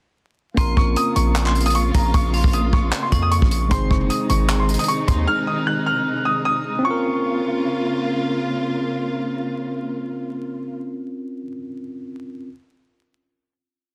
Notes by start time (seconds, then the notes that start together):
0.54 A#1 C#3 A#3 C4 C#4 F4 A#5 C6, kick, closed hi-hat
0.59 F4 A#4
0.77 A#1 C#6, kick
0.96 D#6, closed hi-hat
1.16 A#1 C#6, closed hi-hat
1.36 clap, closed hi-hat
1.46 C6, clap
1.55 closed hi-hat
1.61 closed hi-hat
1.66 D#6, closed hi-hat
1.70 closed hi-hat
1.75 C#6, closed hi-hat
1.94 A#1 A#5, kick, closed hi-hat
2.14 A#1 C#6, kick, closed hi-hat
2.34 C6, open hi-hat
2.44 A#1, kick
2.53 D#6, closed hi-hat
2.73 A#1 C#6, kick
2.93 clap, closed hi-hat
3.03 C6
3.12 F2 C#6, kick, closed hi-hat
3.22 D#6
3.31 C#6, closed hi-hat
3.42 A#1, kick
3.51 closed hi-hat
3.68 G#1 C3 D#3 G#3 C4 D#4 C6, kick, closed hi-hat
3.72 G#4 C5
3.90 F#1 C#6, kick
4.10 D#6, closed hi-hat
4.30 G#1 C#6, closed hi-hat
4.49 clap, closed hi-hat
4.60 C6
4.69 closed hi-hat
4.74 closed hi-hat
4.79 D#6, closed hi-hat
4.84 closed hi-hat
4.88 C#6, closed hi-hat
5.08 D#2 C6, kick, closed hi-hat
5.27 F6
5.47 D#6
5.67 F#6
5.86 F6
6.25 D#6
6.45 D#6
6.79 C4 C#4
6.85 C#3 A#3 F4 C#6
6.91 A#4